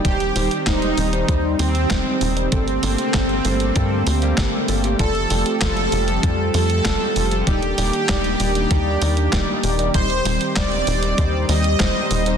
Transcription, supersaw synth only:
X:1
M:4/4
L:1/16
Q:1/4=97
K:Cdor
V:1 name="Supersaw synth"
G3 z E6 C6 | C16 | A3 z A6 A6 | G16 |
c3 z d6 e6 |]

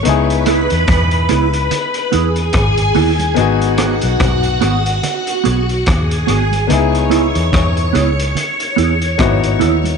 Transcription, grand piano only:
X:1
M:4/4
L:1/8
Q:"Swing 16ths" 1/4=72
K:C#m
V:1 name="Grand piano"
[B,DEG]8 | [B,DFG]8 | [B,DEG]6 [B,DEF]2 |]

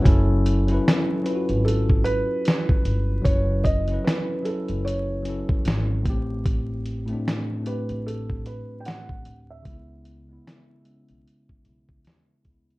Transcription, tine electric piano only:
X:1
M:4/4
L:1/16
Q:"Swing 16ths" 1/4=75
K:Alyd
V:1 name="Tine electric piano"
[F,CEA]2 z [F,CEB]2 z [F,CE^EF]4- [F,C=E^EF] z4 z | [F,CEB]2 z [F,CEB]2 z [F,CEA]2 z2 [F,CEA]2 z2 [A,,A,=C=G]2- | [A,,A,=C=G]2 z [A,,A,C=D]2 z [A,,A,CG]4- [A,,A,CG] z4 z | [C,G,B,E]2 z [C,G,B,E]2 z [C,G,B,C]2 z2 [C,G,B,E]2 z2 [C,G,B,E] z |]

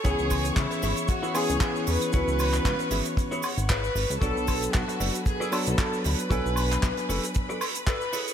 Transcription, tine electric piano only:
X:1
M:4/4
L:1/8
Q:"Swing 16ths" 1/4=115
K:Bdor
V:1 name="Tine electric piano"
[E,B,CG]4- [E,B,CG] [E,B,CG]3 | [E,B,CF]4- [E,B,CF] z3 | [F,B,DA]4- [F,B,DA] [F,B,DA]3 | [F,B,Dg]4- [F,B,Dg] z3 |]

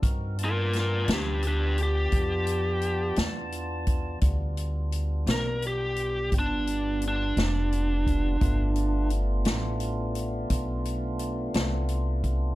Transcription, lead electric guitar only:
X:1
M:12/8
L:1/8
Q:3/8=57
K:Gmix
V:1 name="Lead electric guitar"
z [F_B] [FB] [DG] [DG] G4 z3 | z3 _B G2 D2 D4- | D2 z8 z2 |]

